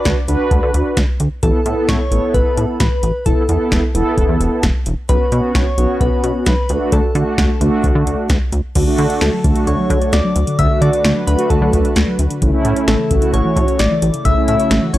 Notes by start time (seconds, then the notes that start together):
Already playing: D4 F#4 B4 D5
0.05 D2, kick, snare, closed hi-hat
0.28 D2 D4 F#4 B4, closed hi-hat
0.51 D2, kick, closed hi-hat
0.63 D3
0.74 D2, closed hi-hat
0.97 D2, kick, snare, closed hi-hat
1.20 D2, closed hi-hat
1.43 A1 B3 E4 A4, kick, closed hi-hat
1.66 A2 B3 E4 A4, closed hi-hat
1.89 A1 C#5, kick, snare, closed hi-hat
2.11 A1 B3 E4 A4, closed hi-hat
2.34 A1 B4, kick, closed hi-hat
2.57 A2, closed hi-hat
2.80 A1 B4, kick, snare, closed hi-hat
3.03 A1, closed hi-hat
3.26 E1 B3 E4 A4, kick, closed hi-hat
3.49 E2 B3 E4 A4, closed hi-hat
3.72 E1, kick, snare, closed hi-hat
3.95 E1 B3 E4 A4, closed hi-hat
4.17 E1, kick, closed hi-hat
4.29 E2
4.40 E1, closed hi-hat
4.63 E1, kick, snare, closed hi-hat
4.86 E1, closed hi-hat
5.09 B1 B3 C#4 F#4 B4, kick, closed hi-hat
5.32 B2 B3 C#4 F#4, closed hi-hat
5.55 B1 C#5, kick, snare, closed hi-hat
5.78 B1 B3 C#4 F#4, closed hi-hat
6.01 B1 B4, kick, closed hi-hat
6.24 B2, closed hi-hat
6.46 B1 B4, kick, snare, closed hi-hat
6.69 D2 A3 D4 F#4, closed hi-hat
6.92 D2 A4, kick, closed hi-hat
7.15 D3 A3 D4 F#4, closed hi-hat
7.38 D2, kick, snare, closed hi-hat
7.61 D2 A3 D4 F#4, closed hi-hat
7.84 D2, kick, closed hi-hat
7.95 D3
8.07 D2, closed hi-hat
8.30 D2, kick, snare, closed hi-hat
8.52 D2, closed hi-hat
8.75 D2 D3 A3 D4 F#4 A4, kick, closed hi-hat, crash
8.87 A3 D4 F#4
8.98 D3, closed hi-hat
9.10 D5, closed hi-hat
9.21 D2 A3 A4, snare, closed hi-hat
9.33 F#3
9.44 D2 A3 D4 F#4, kick, closed hi-hat
9.56 F#4, closed hi-hat
9.67 D2 D3 C#5, closed hi-hat
9.79 F#3
9.90 D3, kick, closed hi-hat
10.02 D5, closed hi-hat
10.13 D2 A3 D5, snare, closed hi-hat
10.24 F#3
10.36 D2, closed hi-hat
10.47 D3, closed hi-hat
10.58 D2 D3 A3 D4 A4 B4 E5, kick, closed hi-hat
10.70 A3 D4 F#4
10.81 D3 D5, closed hi-hat
10.93 D5, closed hi-hat
11.04 D2 A3, snare, closed hi-hat
11.16 F#3
11.27 D2 A3 D4 F#4 B4, closed hi-hat
11.39 F#4, closed hi-hat
11.50 D2 D3 A4, kick, closed hi-hat
11.62 D3 F#3
11.73 D2, kick, closed hi-hat
11.85 D5, closed hi-hat
11.96 D2 A3, snare, closed hi-hat
12.08 F#3
12.19 D2, closed hi-hat
12.30 D3, closed hi-hat
12.42 A1 C#3 A3 C#4 E4, kick, closed hi-hat
12.53 A3 C#4 E4
12.65 A2, closed hi-hat
12.76 C#5, closed hi-hat
12.88 A1 A3 A4, snare, closed hi-hat
12.99 E3
13.11 A1 A3 C#4 F#4, kick, closed hi-hat
13.22 E4, closed hi-hat
13.34 A1 C#3 C#5, closed hi-hat
13.45 E3
13.56 A2, kick, closed hi-hat
13.68 C#5, closed hi-hat
13.79 A1 A3 D5, snare, closed hi-hat
13.91 E3
14.02 A1, closed hi-hat
14.14 C#3, closed hi-hat
14.25 A1 C#3 A3 C#4 E4 F#4 E5, kick, closed hi-hat
14.37 A3 C#4 E4
14.48 A2 E5, closed hi-hat
14.60 C#5, closed hi-hat
14.71 A1 A3, snare, closed hi-hat
14.82 E3
14.93 A1 A3 C#4 E4 C#5, closed hi-hat